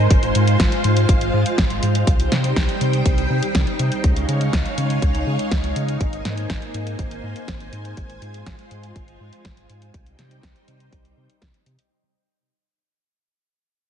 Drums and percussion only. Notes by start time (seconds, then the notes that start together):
0.11 kick, closed hi-hat
0.23 closed hi-hat
0.35 closed hi-hat
0.47 closed hi-hat
0.60 kick, snare, closed hi-hat
0.72 closed hi-hat
0.84 closed hi-hat
0.97 closed hi-hat
1.09 kick, closed hi-hat
1.21 closed hi-hat
1.46 closed hi-hat
1.58 kick, snare, closed hi-hat
1.70 closed hi-hat
1.83 closed hi-hat
1.95 closed hi-hat
2.07 kick, closed hi-hat
2.20 closed hi-hat
2.32 snare, closed hi-hat
2.44 closed hi-hat
2.56 kick, snare, closed hi-hat
2.69 closed hi-hat
2.81 closed hi-hat
2.93 closed hi-hat
3.06 kick, closed hi-hat
3.18 closed hi-hat
3.43 closed hi-hat
3.55 kick, snare, closed hi-hat
3.67 closed hi-hat
3.79 closed hi-hat
3.92 closed hi-hat
4.04 kick, closed hi-hat
4.16 closed hi-hat
4.29 closed hi-hat
4.41 closed hi-hat
4.53 kick, snare, closed hi-hat
4.66 closed hi-hat
4.78 closed hi-hat
4.90 closed hi-hat
5.02 kick, closed hi-hat
5.15 closed hi-hat
5.39 closed hi-hat
5.51 kick, snare, closed hi-hat
5.64 closed hi-hat
5.76 closed hi-hat
5.89 closed hi-hat
6.01 kick, closed hi-hat
6.13 closed hi-hat
6.25 snare, closed hi-hat
6.38 closed hi-hat
6.50 kick, snare, closed hi-hat
6.62 closed hi-hat
6.74 closed hi-hat
6.87 closed hi-hat
6.99 kick, closed hi-hat
7.11 closed hi-hat
7.36 closed hi-hat
7.48 kick, snare, closed hi-hat
7.60 closed hi-hat
7.73 closed hi-hat
7.85 closed hi-hat
7.97 kick, closed hi-hat
8.10 closed hi-hat
8.22 closed hi-hat
8.34 closed hi-hat
8.46 kick, snare, closed hi-hat
8.59 closed hi-hat
8.71 closed hi-hat
8.83 closed hi-hat
8.96 kick, closed hi-hat
9.08 closed hi-hat
9.33 closed hi-hat
9.45 kick, snare, closed hi-hat
9.57 closed hi-hat
9.70 closed hi-hat
9.82 closed hi-hat
9.94 kick, closed hi-hat
10.06 closed hi-hat
10.19 snare, closed hi-hat
10.31 closed hi-hat
10.43 kick, snare, closed hi-hat
10.56 closed hi-hat
10.68 closed hi-hat
10.80 closed hi-hat
10.93 kick, closed hi-hat
11.05 closed hi-hat
11.30 closed hi-hat
11.42 kick, snare, closed hi-hat
11.54 closed hi-hat
11.66 closed hi-hat
11.79 closed hi-hat